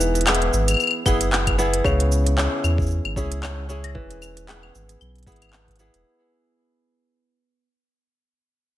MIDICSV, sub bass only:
0, 0, Header, 1, 2, 480
1, 0, Start_track
1, 0, Key_signature, 4, "major"
1, 0, Tempo, 526316
1, 1686, Time_signature, 4, 2, 24, 8
1, 8004, End_track
2, 0, Start_track
2, 0, Title_t, "Sub bass"
2, 0, Program_c, 0, 38
2, 0, Note_on_c, 0, 28, 97
2, 455, Note_off_c, 0, 28, 0
2, 482, Note_on_c, 0, 32, 87
2, 684, Note_off_c, 0, 32, 0
2, 967, Note_on_c, 0, 30, 108
2, 1655, Note_off_c, 0, 30, 0
2, 1682, Note_on_c, 0, 37, 103
2, 2258, Note_off_c, 0, 37, 0
2, 2402, Note_on_c, 0, 40, 96
2, 2738, Note_off_c, 0, 40, 0
2, 2775, Note_on_c, 0, 32, 77
2, 2884, Note_on_c, 0, 37, 94
2, 2898, Note_off_c, 0, 32, 0
2, 3603, Note_on_c, 0, 28, 96
2, 3617, Note_off_c, 0, 37, 0
2, 4293, Note_off_c, 0, 28, 0
2, 4329, Note_on_c, 0, 32, 91
2, 4528, Note_off_c, 0, 32, 0
2, 4567, Note_on_c, 0, 35, 86
2, 4798, Note_off_c, 0, 35, 0
2, 4804, Note_on_c, 0, 32, 101
2, 5379, Note_off_c, 0, 32, 0
2, 5420, Note_on_c, 0, 28, 97
2, 5506, Note_off_c, 0, 28, 0
2, 8004, End_track
0, 0, End_of_file